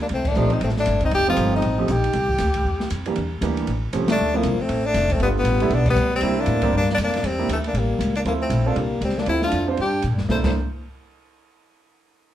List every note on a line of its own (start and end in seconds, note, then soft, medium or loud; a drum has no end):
0.02 0.06 A#3 medium
0.02 0.07 D4 medium
0.09 0.35 C2 medium
0.09 ride medium
0.13 0.28 A3 medium
0.13 0.30 C4 loud
0.25 0.54 A3 medium
0.25 0.55 D4 medium
0.25 kick medium
0.25 crash medium
0.35 0.60 A#1 medium
0.35 0.50 F3 medium
0.35 0.50 A3 medium
0.35 0.50 C4 medium
0.35 0.50 D#4 medium
0.35 0.50 G4 medium
0.35 hi-hat pedal medium
0.50 0.62 C4 medium
0.50 0.62 D#4 medium
0.50 ride soft
0.61 0.86 A1 medium
0.61 0.70 A3 medium
0.61 0.70 C4 medium
0.61 ride medium
0.69 snare soft
0.77 1.01 A3 medium
0.77 1.02 D4 loud
0.77 snare soft
0.86 1.11 G1 medium
0.86 hi-hat pedal soft
0.86 ride medium
1.00 1.12 C4 medium
1.00 kick medium
1.00 ride medium
1.05 1.13 D#4 medium
1.11 1.36 F1 medium
1.11 1.27 D#4 medium
1.11 1.27 G4 loud
1.11 ride medium
1.27 1.61 F3 medium
1.27 1.61 A3 medium
1.27 1.62 C4 medium
1.27 1.52 C4 medium
1.27 1.61 D#4 medium
1.27 1.52 F4 medium
1.27 1.62 G4 medium
1.36 1.62 G1 medium
1.36 hi-hat pedal medium
1.36 ride medium
1.56 1.92 C4 medium
1.56 1.93 D#4 medium
1.62 1.88 A1 medium
1.62 ride medium
1.78 1.87 F3 medium
1.78 1.87 A3 medium
1.78 1.88 C4 medium
1.78 1.88 D#4 medium
1.78 1.88 G4 medium
1.88 2.13 A#1 medium
1.88 2.15 D#4 medium
1.88 2.92 G4 medium
1.88 hi-hat pedal medium
1.88 ride medium
2.04 ride medium
2.13 2.39 C2 medium
2.13 ride medium
2.29 kick medium
2.38 2.64 D2 medium
2.38 snare soft
2.38 hi-hat pedal medium
2.38 ride medium
2.54 kick medium
2.54 ride medium
2.65 2.90 E2 medium
2.80 snare soft
2.90 3.15 F2 medium
2.90 hi-hat pedal medium
2.90 ride medium
3.06 3.15 E3 medium
3.06 3.15 G3 medium
3.06 3.16 A#3 medium
3.06 3.16 D4 medium
3.06 3.16 G4 medium
3.06 ride medium
3.16 3.41 E2 medium
3.16 ride medium
3.41 3.66 D2 medium
3.41 3.67 E3 medium
3.41 3.68 G3 medium
3.41 3.68 A#3 medium
3.41 3.68 D4 medium
3.41 3.68 G4 medium
3.41 hi-hat pedal medium
3.41 ride medium
3.57 ride soft
3.67 3.92 A1 medium
3.67 ride medium
3.93 4.18 C2 medium
3.93 4.06 F3 medium
3.93 4.06 A3 medium
3.93 4.06 C4 medium
3.93 4.07 C#4 medium
3.93 4.07 G4 medium
3.93 hi-hat pedal medium
3.93 ride medium
4.08 4.38 A3 loud
4.08 4.37 D4 loud
4.08 snare medium
4.08 ride medium
4.19 4.43 D2 medium
4.33 4.43 F3 medium
4.33 4.63 F3 medium
4.33 4.43 A3 medium
4.33 4.62 A#3 medium
4.33 4.43 C4 medium
4.33 4.43 D4 medium
4.33 4.43 E4 medium
4.43 4.57 C2 medium
4.43 hi-hat pedal medium
4.43 ride medium
4.59 4.86 A3 medium
4.59 4.88 C4 medium
4.59 muted upright bass stroke soft
4.69 4.94 A1 medium
4.69 ride medium
4.86 5.12 A3 medium
4.86 5.14 D4 loud
4.94 5.18 F1 medium
4.94 snare soft
4.94 hi-hat pedal medium
4.94 ride medium
5.09 5.21 A3 medium
5.09 5.21 C4 medium
5.09 kick medium
5.09 ride medium
5.19 5.43 G1 medium
5.19 5.58 G3 medium
5.19 5.58 A3 medium
5.19 5.58 B3 medium
5.19 5.58 D4 medium
5.19 5.58 F4 medium
5.19 ride medium
5.23 5.29 G3 medium
5.23 5.29 B3 loud
5.38 5.76 G3 medium
5.38 5.76 B3 loud
5.44 5.69 A1 loud
5.44 hi-hat pedal medium
5.44 ride medium
5.60 5.70 G3 medium
5.60 5.70 A3 medium
5.60 5.70 B3 medium
5.60 5.70 D4 medium
5.60 5.70 E4 medium
5.60 ride medium
5.70 5.95 B1 medium
5.70 ride medium
5.74 5.88 B3 medium
5.74 5.87 D4 medium
5.86 6.11 G3 medium
5.86 kick medium
5.86 crash medium
5.90 6.12 B3 loud
5.96 6.21 D2 medium
5.96 hi-hat pedal medium
6.15 6.41 G3 medium
6.15 6.42 C4 loud
6.21 6.46 C2 medium
6.21 6.59 G3 medium
6.21 6.59 A#3 medium
6.21 6.59 C4 medium
6.21 6.60 D4 medium
6.21 6.60 E4 medium
6.21 ride medium
6.39 6.74 A#3 medium
6.39 6.75 D4 medium
6.46 6.72 A2 loud
6.46 hi-hat pedal medium
6.46 ride medium
6.62 6.72 G3 medium
6.62 6.72 A#3 medium
6.62 6.72 C4 medium
6.62 6.72 D4 medium
6.62 6.72 G4 loud
6.62 kick medium
6.62 ride medium
6.73 6.97 G2 medium
6.73 6.88 A#3 medium
6.73 6.89 D4 loud
6.81 snare soft
6.90 6.95 A#3 medium
6.90 snare soft
6.94 7.23 F2 loud
6.94 6.97 D4 medium
6.94 hi-hat pedal medium
6.94 ride medium
7.03 7.28 A#3 medium
7.03 7.28 D4 medium
7.07 snare soft
7.14 snare soft
7.14 ride medium
7.23 7.48 E2 medium
7.23 7.51 G3 medium
7.23 7.51 C4 loud
7.23 ride medium
7.38 7.48 G3 medium
7.38 7.48 A#3 medium
7.38 7.48 D4 medium
7.38 7.48 E4 medium
7.38 7.48 G4 medium
7.49 7.73 D2 medium
7.49 hi-hat pedal medium
7.49 ride medium
7.53 7.59 E3 medium
7.53 7.59 A3 medium
7.64 7.78 A#3 medium
7.64 7.80 D4 medium
7.64 ride soft
7.73 7.98 A1 medium
7.73 8.16 G3 medium
7.73 ride medium
7.78 8.16 A#3 medium
7.99 8.24 C#2 medium
7.99 hi-hat pedal medium
7.99 ride medium
8.15 8.21 A#3 medium
8.15 8.21 D4 medium
8.15 ride soft
8.24 8.49 D2 medium
8.24 8.33 F3 medium
8.24 8.34 A#3 medium
8.24 8.63 C4 medium
8.24 8.63 E4 medium
8.24 8.63 F4 soft
8.24 8.64 A4 medium
8.24 ride medium
8.40 8.69 A3 medium
8.40 8.69 C4 medium
8.50 8.75 A#1 medium
8.50 hi-hat pedal medium
8.50 ride medium
8.66 8.78 A#3 medium
8.66 8.75 C4 medium
8.66 8.75 D4 medium
8.66 8.79 D4 medium
8.66 8.76 F4 medium
8.66 8.76 A4 medium
8.76 9.00 C2 medium
8.76 9.01 G3 medium
8.76 9.03 A#3 medium
8.76 ride medium
9.01 9.26 C#2 medium
9.01 9.20 G3 medium
9.01 9.21 C4 medium
9.01 hi-hat pedal soft
9.01 ride medium
9.10 snare soft
9.18 9.28 A#3 medium
9.18 9.28 D4 medium
9.18 snare soft
9.26 9.52 D2 medium
9.26 9.65 C4 medium
9.26 9.43 C4 medium
9.26 9.65 E4 medium
9.26 9.42 E4 loud
9.26 9.65 F4 medium
9.26 9.66 A4 medium
9.26 ride medium
9.42 9.67 D4 medium
9.42 9.67 F4 medium
9.42 snare medium
9.51 9.77 F2 medium
9.51 hi-hat pedal medium
9.51 ride medium
9.68 9.77 C4 medium
9.68 9.77 D4 medium
9.68 9.77 F4 medium
9.68 9.78 C5 medium
9.77 10.03 G2 medium
9.77 10.03 D4 medium
9.77 10.03 G4 medium
9.77 ride soft
10.02 10.12 A#2 medium
10.02 hi-hat pedal medium
10.02 ride medium
10.12 10.20 G2 soft
10.18 10.28 F2 medium
10.18 snare soft
10.29 10.37 C2 medium
10.29 10.38 A3 medium
10.29 10.38 A#3 medium
10.29 10.39 D4 medium
10.29 10.39 E4 medium
10.29 10.39 A4 medium
10.29 10.39 C5 medium
10.29 kick medium
10.29 snare medium
10.43 10.54 C2 medium
10.43 10.53 A3 medium
10.43 10.53 A#3 medium
10.43 10.53 D4 medium
10.43 10.53 E4 medium
10.43 10.54 A4 medium
10.43 10.55 C5 medium
10.43 kick medium
10.43 snare medium
10.43 crash medium